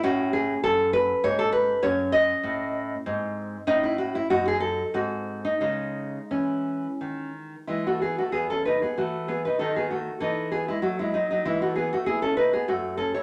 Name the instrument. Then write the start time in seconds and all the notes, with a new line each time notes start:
nylon-string guitar
0.03 A2 C#4 F#4
0.33 G#4
0.64 F#2 A4
0.93 B4
1.24 G#2 C#5
1.39 A4
1.52 B4
1.82 F#2 C#4 C#5
2.12 D#5
2.43 A2
3.06 G#2 C4
3.67 A2 C#4 D#4
3.83 E4
3.98 F#4
4.15 E4
4.30 F#2 D#4 F#4
4.48 G#4
4.60 A4
4.94 G#2 C4 F#4
5.45 D#4
5.61 C#3 G#3 D#4
6.31 E3 C#4
7.01 D#3
7.67 E3 G#3 E4
7.87 A3 F#4
8.02 B3 G#4
8.18 A3 F#4
8.32 E2 B3 G#4
8.50 C#4 A4
8.65 D#4 B4
8.82 B3 G#4
8.97 E3 A3 F#4
9.28 B3 G#4
9.45 D#4 B4
9.59 D#3 D#4 A4
9.76 B3 G#4
9.91 A3 F#4
10.20 E3 D#4 A4
10.52 B3 G#4
10.68 G#3 E4
10.82 F#3 A3 F#4
10.99 G#3 E4
11.14 F#3 D#4
11.31 F#3 D#4
11.45 E3 G#3 E4
11.62 A3 F#4
11.76 B3 G#4
11.93 A3 F#4
12.06 B3 E4 G#4
12.22 C#4 A4
12.37 D#4 B4
12.53 B3 G#4
12.68 F#2 A3 F#4
12.97 C#4 A4
13.14 E4 C#5